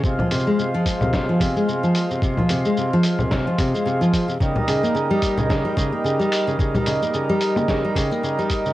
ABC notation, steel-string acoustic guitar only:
X:1
M:4/4
L:1/16
Q:"Swing 16ths" 1/4=110
K:Fm
V:1 name="Steel-string acoustic guitar" clef=bass
C, F, C, A, C, F,2 C, C, F, C, A, C, F,2 C, | C, F, C, A, C, F,2 C, C, F, C, A, C, F,2 C, | D, G, D, B, D, G,2 D, D, G, D, B, D, G,2 D, | D, G, D, B, D, G,2 D, D, G, D, B, D, G,2 D, |]